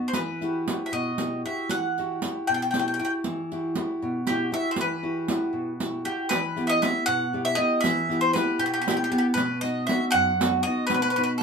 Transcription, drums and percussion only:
0.13 riq
0.42 riq
0.68 riq
1.18 riq
1.69 riq
1.98 riq
2.22 riq
2.74 riq
3.24 riq
3.52 riq
3.75 riq
4.27 riq
4.76 riq
5.28 riq
5.80 riq
6.31 riq
6.57 riq
6.83 riq
7.84 riq
8.11 riq
8.36 riq
8.88 riq
9.37 riq
9.65 riq
9.89 riq
10.41 riq
10.90 riq

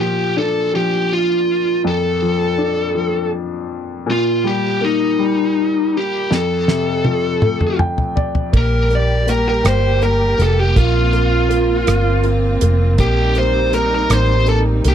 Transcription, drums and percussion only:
6.32 snare
6.68 snare
7.05 high tom
7.42 mid tom
7.61 mid tom
7.79 mid tom
7.98 floor tom
8.17 floor tom
8.35 floor tom
8.53 kick, crash
8.90 closed hi-hat
9.28 closed hi-hat
9.65 cross-stick, closed hi-hat
10.02 closed hi-hat
10.40 closed hi-hat
10.76 kick, closed hi-hat
11.13 closed hi-hat
11.51 closed hi-hat
11.87 cross-stick, closed hi-hat
12.24 closed hi-hat
12.61 closed hi-hat
12.98 kick, closed hi-hat
13.35 closed hi-hat
13.73 closed hi-hat
14.10 cross-stick, closed hi-hat
14.46 closed hi-hat
14.84 closed hi-hat

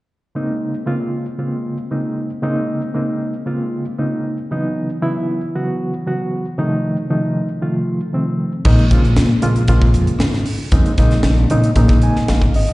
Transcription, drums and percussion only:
8.65 kick, crash
8.78 closed hi-hat
8.91 kick, closed hi-hat
9.05 closed hi-hat
9.16 snare, closed hi-hat
9.42 closed hi-hat
9.56 closed hi-hat
9.68 kick, closed hi-hat
9.82 kick
9.94 closed hi-hat
10.07 closed hi-hat
10.20 snare, closed hi-hat
10.34 snare
10.46 open hi-hat
10.72 kick, closed hi-hat
10.86 closed hi-hat
10.98 kick, snare, closed hi-hat
11.11 snare, closed hi-hat
11.23 snare, closed hi-hat
11.50 closed hi-hat
11.64 closed hi-hat
11.76 kick, closed hi-hat
11.88 kick, snare, closed hi-hat
12.02 closed hi-hat
12.16 snare
12.28 snare, closed hi-hat
12.42 kick, closed hi-hat
12.54 open hi-hat
12.67 closed hi-hat

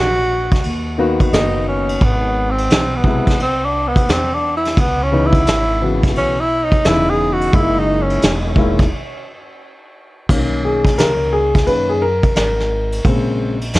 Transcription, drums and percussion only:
0.52 kick, snare, ride
0.63 ride
1.20 kick, ride
1.33 snare, hi-hat pedal, ride
1.89 ride
2.01 kick, ride
2.58 ride
2.70 snare, hi-hat pedal, ride
3.04 kick
3.27 kick, snare, ride
3.40 ride
3.96 kick, ride
4.09 snare, hi-hat pedal, ride
4.65 snare, ride
4.77 kick, ride
5.33 kick, ride
5.47 snare, hi-hat pedal, ride
6.03 kick, snare, ride
6.16 ride
6.72 kick, ride
6.84 snare, hi-hat pedal, ride
7.41 ride
7.53 kick, ride
8.10 ride
8.22 snare, hi-hat pedal, ride
8.56 kick
8.79 kick, snare, ride
10.29 kick, crash
10.85 kick, snare, ride
10.98 snare, hi-hat pedal, ride
11.54 kick, snare, ride
11.67 ride
12.23 kick, ride
12.36 snare, hi-hat pedal, ride
12.60 snare
12.92 ride
13.05 kick, ride
13.61 ride
13.73 snare, hi-hat pedal, ride

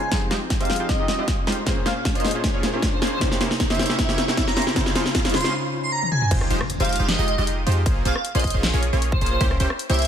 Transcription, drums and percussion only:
0.12 kick, snare, closed hi-hat
0.31 snare, closed hi-hat
0.50 kick, snare, closed hi-hat
0.61 closed hi-hat
0.65 closed hi-hat
0.70 snare, closed hi-hat
0.73 closed hi-hat
0.76 closed hi-hat
0.89 kick, snare, closed hi-hat
1.08 snare, closed hi-hat
1.28 kick, snare, closed hi-hat
1.47 snare, closed hi-hat
1.52 closed hi-hat
1.67 kick, snare, closed hi-hat
1.86 snare, closed hi-hat
2.05 kick, snare, closed hi-hat
2.15 closed hi-hat
2.20 closed hi-hat
2.25 snare, closed hi-hat
2.28 closed hi-hat
2.31 closed hi-hat
2.44 kick, snare, closed hi-hat
2.63 snare, closed hi-hat
2.82 kick, snare, closed hi-hat
3.02 snare, closed hi-hat
3.07 closed hi-hat
3.21 kick, snare, closed hi-hat
3.32 snare
3.41 snare, closed hi-hat
3.51 snare
3.60 kick, snare, closed hi-hat
3.70 snare, closed hi-hat
3.75 closed hi-hat
3.79 snare, closed hi-hat
3.83 closed hi-hat
3.86 snare, closed hi-hat
3.99 kick, snare, closed hi-hat
4.09 snare
4.18 snare, closed hi-hat
4.28 snare
4.37 kick, snare, closed hi-hat
4.48 snare
4.57 snare, closed hi-hat
4.62 closed hi-hat
4.67 snare
4.76 kick, snare, closed hi-hat
4.86 snare
4.95 snare, closed hi-hat
5.06 snare
5.15 kick, snare, closed hi-hat
5.25 snare, closed hi-hat
5.30 closed hi-hat
5.34 snare, closed hi-hat
5.38 closed hi-hat
5.41 snare, closed hi-hat
6.03 high tom
6.12 mid tom
6.22 mid tom
6.31 kick, closed hi-hat, crash
6.41 cross-stick
6.51 closed hi-hat
6.61 cross-stick
6.70 closed hi-hat
6.80 closed hi-hat
6.85 closed hi-hat
6.89 closed hi-hat
6.93 closed hi-hat
6.96 closed hi-hat
7.09 snare, closed hi-hat
7.28 closed hi-hat
7.47 closed hi-hat
7.67 closed hi-hat
7.72 closed hi-hat
7.86 kick, closed hi-hat
8.05 closed hi-hat
8.16 cross-stick
8.25 closed hi-hat
8.35 closed hi-hat
8.39 closed hi-hat
8.44 kick, closed hi-hat
8.47 closed hi-hat
8.50 closed hi-hat
8.63 snare, closed hi-hat
8.83 closed hi-hat
9.02 closed hi-hat
9.12 kick
9.21 closed hi-hat
9.26 closed hi-hat
9.41 kick, closed hi-hat
9.51 cross-stick
9.60 closed hi-hat
9.70 cross-stick
9.79 closed hi-hat
9.90 closed hi-hat
9.94 closed hi-hat
9.99 closed hi-hat
10.02 closed hi-hat

